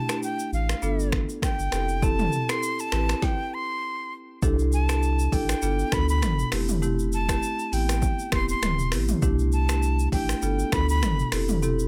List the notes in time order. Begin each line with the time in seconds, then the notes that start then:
Already playing: A5
0.09 A3 D4 E4 G4, finger snap, cross-stick, shaker
0.23 G5, shaker
0.39 shaker
0.53 A1 F5, shaker
0.69 finger snap, cross-stick, shaker
0.82 G1 B3 D4 F4 A4, shaker
0.99 shaker
1.12 finger snap, kick, cross-stick
1.29 shaker
1.42 G5, finger snap, kick, cross-stick, shaker
1.59 G1, shaker
1.72 F1 C4 E4 G4 A4, finger snap, cross-stick, shaker
1.89 shaker
2.02 C4 E4 G4 A4 A5, kick, shaker
2.19 mid tom, shaker
2.33 shaker
2.49 C4 E4 G4 A4 C6, finger snap, cross-stick, shaker
2.63 shaker
2.79 A5, shaker
2.92 A1 C4 E4 G4 B4, finger snap, cross-stick, shaker
3.09 finger snap, cross-stick, shaker
3.22 G5, kick, snare
3.54 C6
4.42 C2 D4 E4 G4 A4, kick, shaker
4.59 shaker
4.72 A5, shaker
4.89 D4 E4 G4 A4, finger snap, cross-stick, shaker
5.03 shaker
5.19 shaker
5.32 A1 D4 E4 G4 A4 G5, kick, open hi-hat, shaker
5.49 finger snap, cross-stick, shaker
5.62 G1 B3 D4 F4 A4, shaker
5.79 shaker
5.92 D2 B3 D4 F4 A4 B5, finger snap, kick, cross-stick, shaker
6.09 B5, shaker
6.22 G1, finger snap, cross-stick, mid tom, shaker
6.39 shaker
6.52 F1 A3 C4 E4 G4, finger snap, cross-stick, open hi-hat, shaker
6.68 mid tom, shaker
6.82 A3 C4 E4 G4, shaker
6.99 shaker
7.12 A5, shaker
7.28 A3 C4 E4 G4, finger snap, kick, cross-stick, shaker
7.43 shaker
7.59 shaker
7.72 A1 B3 C4 E4 G4 G5, open hi-hat, shaker
7.89 finger snap, cross-stick, shaker
8.02 kick, shaker
8.19 shaker
8.32 E1 B3 C4 E4 G4 C6, finger snap, kick, cross-stick, shaker
8.49 C6, shaker
8.62 D1, finger snap, cross-stick, mid tom, shaker
8.79 shaker
8.92 A1 B3 C4 E4 G4, finger snap, cross-stick, open hi-hat, shaker
9.08 mid tom, shaker
9.22 C2 A3 D4 E4 G4, kick, shaker
9.39 shaker
9.52 A5, shaker
9.69 A3 D4 E4 G4, finger snap, cross-stick, shaker
9.83 shaker
9.99 shaker
10.12 A1 A3 D4 E4 G4 G5, kick, open hi-hat, shaker
10.29 finger snap, cross-stick, shaker
10.42 G1 B3 D4 F4 A4, shaker
10.59 shaker
10.72 D2 B3 D4 F4 A4 B5, finger snap, kick, cross-stick, shaker
10.89 B5, shaker
11.02 G1, finger snap, cross-stick, mid tom, shaker
11.19 shaker
11.32 F1 C4 E4 G4 A4, finger snap, cross-stick, open hi-hat, shaker
11.49 mid tom, shaker
11.63 C4 E4 G4 A4, shaker
11.79 shaker